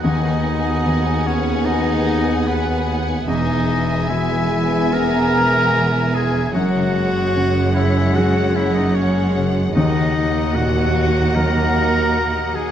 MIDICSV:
0, 0, Header, 1, 12, 480
1, 0, Start_track
1, 0, Key_signature, 5, "minor"
1, 0, Tempo, 814111
1, 27, Time_signature, 4, 2, 24, 8
1, 3387, Tempo, 801068
1, 7564, End_track
2, 0, Start_track
2, 0, Title_t, "Violin section"
2, 0, Program_c, 0, 48
2, 23, Note_on_c, 0, 80, 66
2, 1908, Note_off_c, 0, 80, 0
2, 1930, Note_on_c, 0, 80, 77
2, 3844, Note_off_c, 0, 80, 0
2, 3866, Note_on_c, 0, 78, 72
2, 5765, Note_off_c, 0, 78, 0
2, 5792, Note_on_c, 0, 78, 81
2, 7564, Note_off_c, 0, 78, 0
2, 7564, End_track
3, 0, Start_track
3, 0, Title_t, "Flute section"
3, 0, Program_c, 1, 73
3, 29, Note_on_c, 1, 75, 85
3, 598, Note_off_c, 1, 75, 0
3, 744, Note_on_c, 1, 73, 78
3, 973, Note_on_c, 1, 75, 94
3, 981, Note_off_c, 1, 73, 0
3, 1454, Note_off_c, 1, 75, 0
3, 1456, Note_on_c, 1, 71, 80
3, 1928, Note_on_c, 1, 75, 82
3, 1933, Note_off_c, 1, 71, 0
3, 2401, Note_on_c, 1, 76, 80
3, 2412, Note_off_c, 1, 75, 0
3, 2726, Note_off_c, 1, 76, 0
3, 2897, Note_on_c, 1, 82, 115
3, 3609, Note_off_c, 1, 82, 0
3, 3623, Note_on_c, 1, 80, 79
3, 3866, Note_on_c, 1, 78, 85
3, 3867, Note_off_c, 1, 80, 0
3, 4576, Note_off_c, 1, 78, 0
3, 4586, Note_on_c, 1, 76, 78
3, 4829, Note_on_c, 1, 78, 93
3, 4830, Note_off_c, 1, 76, 0
3, 5071, Note_off_c, 1, 78, 0
3, 5072, Note_on_c, 1, 76, 80
3, 5192, Note_off_c, 1, 76, 0
3, 5193, Note_on_c, 1, 75, 73
3, 5313, Note_off_c, 1, 75, 0
3, 5314, Note_on_c, 1, 73, 88
3, 5642, Note_off_c, 1, 73, 0
3, 5794, Note_on_c, 1, 75, 81
3, 6260, Note_off_c, 1, 75, 0
3, 6268, Note_on_c, 1, 78, 98
3, 6746, Note_off_c, 1, 78, 0
3, 6747, Note_on_c, 1, 82, 102
3, 7467, Note_off_c, 1, 82, 0
3, 7468, Note_on_c, 1, 80, 75
3, 7564, Note_off_c, 1, 80, 0
3, 7564, End_track
4, 0, Start_track
4, 0, Title_t, "Oboe"
4, 0, Program_c, 2, 68
4, 22, Note_on_c, 2, 75, 88
4, 746, Note_on_c, 2, 73, 74
4, 754, Note_off_c, 2, 75, 0
4, 976, Note_on_c, 2, 75, 80
4, 985, Note_off_c, 2, 73, 0
4, 1459, Note_on_c, 2, 71, 73
4, 1468, Note_off_c, 2, 75, 0
4, 1772, Note_off_c, 2, 71, 0
4, 1935, Note_on_c, 2, 75, 90
4, 2393, Note_off_c, 2, 75, 0
4, 2413, Note_on_c, 2, 76, 76
4, 2913, Note_on_c, 2, 82, 91
4, 2922, Note_off_c, 2, 76, 0
4, 3627, Note_off_c, 2, 82, 0
4, 3631, Note_on_c, 2, 80, 75
4, 3866, Note_off_c, 2, 80, 0
4, 3872, Note_on_c, 2, 78, 87
4, 4599, Note_on_c, 2, 76, 85
4, 4608, Note_off_c, 2, 78, 0
4, 4833, Note_on_c, 2, 78, 75
4, 4842, Note_off_c, 2, 76, 0
4, 5070, Note_on_c, 2, 76, 78
4, 5079, Note_off_c, 2, 78, 0
4, 5183, Note_on_c, 2, 75, 83
4, 5192, Note_off_c, 2, 76, 0
4, 5305, Note_on_c, 2, 73, 82
4, 5314, Note_off_c, 2, 75, 0
4, 5625, Note_off_c, 2, 73, 0
4, 5792, Note_on_c, 2, 75, 83
4, 6266, Note_on_c, 2, 78, 94
4, 6275, Note_off_c, 2, 75, 0
4, 6747, Note_on_c, 2, 82, 88
4, 6756, Note_off_c, 2, 78, 0
4, 7468, Note_on_c, 2, 80, 70
4, 7477, Note_off_c, 2, 82, 0
4, 7564, Note_off_c, 2, 80, 0
4, 7564, End_track
5, 0, Start_track
5, 0, Title_t, "Violin section"
5, 0, Program_c, 3, 48
5, 28, Note_on_c, 3, 78, 67
5, 1911, Note_off_c, 3, 78, 0
5, 1940, Note_on_c, 3, 76, 78
5, 3849, Note_off_c, 3, 76, 0
5, 3869, Note_on_c, 3, 73, 70
5, 5767, Note_off_c, 3, 73, 0
5, 5796, Note_on_c, 3, 75, 64
5, 7564, Note_off_c, 3, 75, 0
5, 7564, End_track
6, 0, Start_track
6, 0, Title_t, "Harp"
6, 0, Program_c, 4, 46
6, 0, Note_on_c, 4, 63, 51
6, 0, Note_on_c, 4, 66, 67
6, 0, Note_on_c, 4, 75, 54
6, 0, Note_on_c, 4, 78, 55
6, 27, Note_on_c, 4, 51, 77
6, 141, Note_off_c, 4, 63, 0
6, 148, Note_on_c, 4, 63, 51
6, 271, Note_on_c, 4, 59, 56
6, 381, Note_off_c, 4, 66, 0
6, 388, Note_on_c, 4, 66, 50
6, 508, Note_on_c, 4, 68, 62
6, 738, Note_off_c, 4, 78, 0
6, 745, Note_on_c, 4, 78, 57
6, 863, Note_on_c, 4, 80, 64
6, 975, Note_off_c, 4, 78, 0
6, 982, Note_on_c, 4, 78, 55
6, 1096, Note_off_c, 4, 80, 0
6, 1103, Note_on_c, 4, 80, 70
6, 1215, Note_off_c, 4, 78, 0
6, 1222, Note_on_c, 4, 78, 64
6, 1449, Note_off_c, 4, 66, 0
6, 1456, Note_on_c, 4, 66, 59
6, 1571, Note_off_c, 4, 59, 0
6, 1578, Note_on_c, 4, 59, 54
6, 1686, Note_off_c, 4, 63, 0
6, 1693, Note_on_c, 4, 63, 59
6, 1721, Note_off_c, 4, 75, 0
6, 1807, Note_off_c, 4, 59, 0
6, 1814, Note_on_c, 4, 59, 53
6, 1931, Note_on_c, 4, 52, 81
6, 1952, Note_off_c, 4, 63, 0
6, 1953, Note_off_c, 4, 51, 0
6, 1953, Note_off_c, 4, 66, 0
6, 1955, Note_off_c, 4, 78, 0
6, 2173, Note_on_c, 4, 56, 52
6, 2286, Note_off_c, 4, 68, 0
6, 2293, Note_on_c, 4, 68, 60
6, 2405, Note_off_c, 4, 56, 0
6, 2412, Note_on_c, 4, 56, 63
6, 2529, Note_off_c, 4, 68, 0
6, 2536, Note_on_c, 4, 68, 55
6, 2650, Note_off_c, 4, 80, 0
6, 2657, Note_on_c, 4, 80, 60
6, 2774, Note_off_c, 4, 68, 0
6, 2781, Note_on_c, 4, 68, 61
6, 2896, Note_off_c, 4, 80, 0
6, 3018, Note_off_c, 4, 68, 0
6, 3025, Note_on_c, 4, 68, 66
6, 3146, Note_on_c, 4, 80, 65
6, 3255, Note_off_c, 4, 68, 0
6, 3262, Note_on_c, 4, 68, 59
6, 3372, Note_off_c, 4, 56, 0
6, 3380, Note_on_c, 4, 56, 68
6, 3503, Note_on_c, 4, 64, 56
6, 3617, Note_off_c, 4, 56, 0
6, 3625, Note_on_c, 4, 56, 67
6, 3738, Note_off_c, 4, 64, 0
6, 3745, Note_on_c, 4, 64, 58
6, 3868, Note_on_c, 4, 42, 85
6, 3887, Note_off_c, 4, 64, 0
6, 3888, Note_off_c, 4, 52, 0
6, 3889, Note_off_c, 4, 59, 0
6, 3988, Note_on_c, 4, 49, 56
6, 4101, Note_off_c, 4, 56, 0
6, 4108, Note_on_c, 4, 56, 50
6, 4341, Note_off_c, 4, 68, 0
6, 4348, Note_on_c, 4, 68, 66
6, 4470, Note_on_c, 4, 66, 62
6, 4594, Note_on_c, 4, 78, 59
6, 4708, Note_off_c, 4, 80, 0
6, 4716, Note_on_c, 4, 80, 65
6, 4831, Note_off_c, 4, 78, 0
6, 4838, Note_on_c, 4, 78, 74
6, 4953, Note_off_c, 4, 80, 0
6, 4960, Note_on_c, 4, 80, 75
6, 5074, Note_off_c, 4, 78, 0
6, 5081, Note_on_c, 4, 78, 67
6, 5196, Note_off_c, 4, 68, 0
6, 5204, Note_on_c, 4, 68, 56
6, 5315, Note_off_c, 4, 66, 0
6, 5322, Note_on_c, 4, 66, 67
6, 5432, Note_off_c, 4, 56, 0
6, 5439, Note_on_c, 4, 56, 56
6, 5551, Note_off_c, 4, 49, 0
6, 5558, Note_on_c, 4, 49, 62
6, 5673, Note_off_c, 4, 56, 0
6, 5680, Note_on_c, 4, 56, 61
6, 5798, Note_on_c, 4, 51, 85
6, 5809, Note_off_c, 4, 42, 0
6, 5813, Note_off_c, 4, 49, 0
6, 5813, Note_off_c, 4, 80, 0
6, 5814, Note_off_c, 4, 56, 0
6, 5815, Note_off_c, 4, 68, 0
6, 5919, Note_on_c, 4, 63, 59
6, 6038, Note_on_c, 4, 54, 49
6, 6149, Note_off_c, 4, 66, 0
6, 6156, Note_on_c, 4, 66, 58
6, 6272, Note_on_c, 4, 70, 61
6, 6386, Note_off_c, 4, 66, 0
6, 6393, Note_on_c, 4, 66, 60
6, 6504, Note_off_c, 4, 78, 0
6, 6511, Note_on_c, 4, 78, 55
6, 6630, Note_on_c, 4, 82, 60
6, 6743, Note_off_c, 4, 78, 0
6, 6862, Note_off_c, 4, 82, 0
6, 6869, Note_on_c, 4, 82, 59
6, 6989, Note_on_c, 4, 78, 57
6, 7100, Note_off_c, 4, 66, 0
6, 7107, Note_on_c, 4, 66, 55
6, 7221, Note_off_c, 4, 54, 0
6, 7228, Note_on_c, 4, 54, 58
6, 7342, Note_off_c, 4, 63, 0
6, 7349, Note_on_c, 4, 63, 51
6, 7460, Note_off_c, 4, 54, 0
6, 7467, Note_on_c, 4, 54, 52
6, 7564, Note_off_c, 4, 51, 0
6, 7564, Note_off_c, 4, 54, 0
6, 7564, Note_off_c, 4, 63, 0
6, 7564, Note_off_c, 4, 66, 0
6, 7564, Note_off_c, 4, 70, 0
6, 7564, Note_off_c, 4, 78, 0
6, 7564, Note_off_c, 4, 82, 0
6, 7564, End_track
7, 0, Start_track
7, 0, Title_t, "Clarinet"
7, 0, Program_c, 5, 71
7, 18, Note_on_c, 5, 63, 96
7, 724, Note_off_c, 5, 63, 0
7, 738, Note_on_c, 5, 61, 89
7, 969, Note_on_c, 5, 63, 115
7, 978, Note_off_c, 5, 61, 0
7, 1452, Note_off_c, 5, 63, 0
7, 1457, Note_on_c, 5, 59, 83
7, 1764, Note_off_c, 5, 59, 0
7, 1931, Note_on_c, 5, 63, 110
7, 2412, Note_on_c, 5, 64, 98
7, 2420, Note_off_c, 5, 63, 0
7, 2903, Note_on_c, 5, 70, 127
7, 2912, Note_off_c, 5, 64, 0
7, 3629, Note_on_c, 5, 68, 107
7, 3638, Note_off_c, 5, 70, 0
7, 3859, Note_off_c, 5, 68, 0
7, 3863, Note_on_c, 5, 66, 116
7, 4582, Note_on_c, 5, 64, 94
7, 4591, Note_off_c, 5, 66, 0
7, 4827, Note_on_c, 5, 66, 114
7, 4836, Note_off_c, 5, 64, 0
7, 5073, Note_on_c, 5, 64, 98
7, 5082, Note_off_c, 5, 66, 0
7, 5200, Note_on_c, 5, 63, 84
7, 5209, Note_off_c, 5, 64, 0
7, 5315, Note_on_c, 5, 61, 87
7, 5324, Note_off_c, 5, 63, 0
7, 5630, Note_off_c, 5, 61, 0
7, 5783, Note_on_c, 5, 63, 106
7, 6272, Note_on_c, 5, 66, 104
7, 6281, Note_off_c, 5, 63, 0
7, 6749, Note_on_c, 5, 70, 127
7, 6758, Note_off_c, 5, 66, 0
7, 7466, Note_on_c, 5, 68, 99
7, 7475, Note_off_c, 5, 70, 0
7, 7564, Note_off_c, 5, 68, 0
7, 7564, End_track
8, 0, Start_track
8, 0, Title_t, "French horn section"
8, 0, Program_c, 6, 60
8, 21, Note_on_c, 6, 68, 75
8, 23, Note_on_c, 6, 59, 79
8, 1907, Note_off_c, 6, 68, 0
8, 1908, Note_off_c, 6, 59, 0
8, 1929, Note_on_c, 6, 59, 84
8, 1930, Note_on_c, 6, 68, 85
8, 3774, Note_off_c, 6, 59, 0
8, 3774, Note_off_c, 6, 68, 0
8, 3875, Note_on_c, 6, 61, 86
8, 3880, Note_on_c, 6, 68, 88
8, 5770, Note_off_c, 6, 61, 0
8, 5772, Note_off_c, 6, 68, 0
8, 5785, Note_on_c, 6, 58, 83
8, 5787, Note_on_c, 6, 66, 76
8, 7564, Note_off_c, 6, 58, 0
8, 7564, Note_off_c, 6, 66, 0
8, 7564, End_track
9, 0, Start_track
9, 0, Title_t, "Viola section"
9, 0, Program_c, 7, 48
9, 23, Note_on_c, 7, 59, 78
9, 1908, Note_off_c, 7, 59, 0
9, 1927, Note_on_c, 7, 59, 71
9, 3843, Note_off_c, 7, 59, 0
9, 3865, Note_on_c, 7, 56, 83
9, 5765, Note_off_c, 7, 56, 0
9, 5795, Note_on_c, 7, 58, 73
9, 7564, Note_off_c, 7, 58, 0
9, 7564, End_track
10, 0, Start_track
10, 0, Title_t, "Felt piano"
10, 0, Program_c, 8, 0
10, 0, Control_c, 8, 64, 127
10, 24, Note_on_c, 8, 39, 67
10, 37, Control_c, 8, 64, 0
10, 122, Control_c, 8, 64, 127
10, 504, Note_on_c, 8, 51, 54
10, 973, Note_on_c, 8, 59, 54
10, 978, Note_on_c, 8, 66, 53
10, 980, Note_on_c, 8, 68, 63
10, 1266, Note_off_c, 8, 51, 0
10, 1907, Note_off_c, 8, 59, 0
10, 1909, Note_off_c, 8, 39, 0
10, 1909, Note_off_c, 8, 66, 0
10, 1910, Note_off_c, 8, 68, 0
10, 1931, Note_on_c, 8, 40, 69
10, 1946, Control_c, 8, 64, 0
10, 2055, Control_c, 8, 64, 127
10, 2414, Note_on_c, 8, 47, 57
10, 2908, Note_on_c, 8, 59, 56
10, 2911, Note_on_c, 8, 68, 66
10, 3197, Note_off_c, 8, 47, 0
10, 3845, Note_off_c, 8, 40, 0
10, 3846, Note_off_c, 8, 59, 0
10, 3847, Note_off_c, 8, 68, 0
10, 3871, Note_on_c, 8, 42, 75
10, 3881, Control_c, 8, 64, 0
10, 3973, Control_c, 8, 64, 127
10, 4355, Note_on_c, 8, 49, 58
10, 4836, Note_on_c, 8, 54, 64
10, 4838, Note_on_c, 8, 66, 59
10, 4840, Note_on_c, 8, 68, 69
10, 5123, Note_off_c, 8, 49, 0
10, 5768, Note_off_c, 8, 42, 0
10, 5768, Note_off_c, 8, 54, 0
10, 5769, Note_off_c, 8, 66, 0
10, 5770, Note_off_c, 8, 68, 0
10, 5794, Note_on_c, 8, 39, 74
10, 5803, Control_c, 8, 64, 0
10, 5908, Control_c, 8, 64, 127
10, 6267, Note_on_c, 8, 46, 57
10, 6749, Note_on_c, 8, 54, 55
10, 6749, Note_on_c, 8, 66, 60
10, 6755, Note_on_c, 8, 70, 63
10, 7032, Note_off_c, 8, 46, 0
10, 7564, Note_off_c, 8, 39, 0
10, 7564, Note_off_c, 8, 54, 0
10, 7564, Note_off_c, 8, 66, 0
10, 7564, Note_off_c, 8, 70, 0
10, 7564, End_track
11, 0, Start_track
11, 0, Title_t, "Cello section"
11, 0, Program_c, 10, 48
11, 27, Note_on_c, 10, 39, 69
11, 1911, Note_off_c, 10, 39, 0
11, 1932, Note_on_c, 10, 40, 75
11, 3845, Note_off_c, 10, 40, 0
11, 3869, Note_on_c, 10, 42, 88
11, 5766, Note_off_c, 10, 42, 0
11, 5788, Note_on_c, 10, 39, 83
11, 7564, Note_off_c, 10, 39, 0
11, 7564, End_track
12, 0, Start_track
12, 0, Title_t, "Double bass section"
12, 0, Program_c, 11, 48
12, 24, Note_on_c, 11, 39, 68
12, 1909, Note_off_c, 11, 39, 0
12, 1937, Note_on_c, 11, 28, 75
12, 3848, Note_off_c, 11, 28, 0
12, 3871, Note_on_c, 11, 30, 77
12, 5767, Note_off_c, 11, 30, 0
12, 5792, Note_on_c, 11, 39, 77
12, 7564, Note_off_c, 11, 39, 0
12, 7564, End_track
0, 0, End_of_file